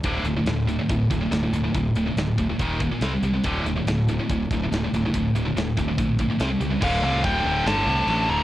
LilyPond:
<<
  \new Staff \with { instrumentName = "Lead electric guitar" } { \time 4/4 \key c \mixolydian \tempo 4 = 142 r1 | r1 | r1 | r1 |
f''8 f''8 g''4 a''4. bes''8 | }
  \new Staff \with { instrumentName = "Distorted electric guitar" } { \clef bass \time 4/4 \key c \mixolydian <d, a, d>8 <d, a,>16 <d, a,>16 <d, a,>8 <d, a,>16 <d, a,>16 <d, a,>8 <d, a,>16 <d, a,>16 <d, a,>16 <d, a,>16 <d, a,>16 <d, a,>16 | <d, a,>8 <d, a,>16 <d, a,>16 <d, a,>8 <d, a,>16 <d, a,>16 <ees, bes, ees>8 <ees, bes,>16 <ees, bes,>16 <c g c'>16 <c g>16 <c g>16 <c g>16 | <d, a, d>8 <d, a,>16 <d, a,>16 <d, a,>8 <d, a,>16 <d, a,>16 <d, a,>8 <d, a,>16 <d, a,>16 <d, a,>16 <d, a,>16 <d, a,>16 <d, a,>16 | <d, a,>8 <d, a,>16 <d, a,>16 <d, a,>8 <d, a,>16 <d, a,>16 <d, a,>8 <d, a,>16 <d, a,>16 <c g c'>16 <c g>16 <c g>16 <c g>16 |
<d, a, d>8 <d, a, d>8 <d, a, d>8 <d, a, d>8 <d, a, d>8 <d, a, d>8 <d, a, d>8 <d, a, d>8 | }
  \new Staff \with { instrumentName = "Fingered electric bass" } { \clef bass \time 4/4 \key c \mixolydian d,,8 d,,8 d,,4 d,,8 d,,8 d,,8 d,,8 | d,,8 d,,8 d,,8 d,,8 ees,,4 c,8 c,8 | d,,8 d,,8 d,,4 d,,8 d,,8 d,,8 d,,8 | d,,8 d,,8 d,,8 d,,8 bes,,4 c,8 cis,8 |
d,,8 c,8 d,,8 d,,8 g,,8 c,8 a,,8 d,,8 | }
  \new DrumStaff \with { instrumentName = "Drums" } \drummode { \time 4/4 <hh bd>8 hh8 <hh sn>8 hh8 <hh bd>8 <hh bd>8 <hh sn>8 hh8 | <hh bd>8 hh8 <hh sn>8 <hh bd>8 <hh bd>8 <hh bd>8 <hh sn>8 hh8 | <hh bd>8 hh8 <hh sn>8 hh8 <hh bd>8 <hh bd>8 <hh sn>8 hh8 | <hh bd>8 hh8 <hh sn>8 <hh bd>8 <hh bd>8 <hh bd>8 <hh sn>8 hh8 |
<cymc bd>4 <cymc bd>4 <cymc sn>4 cymc4 | }
>>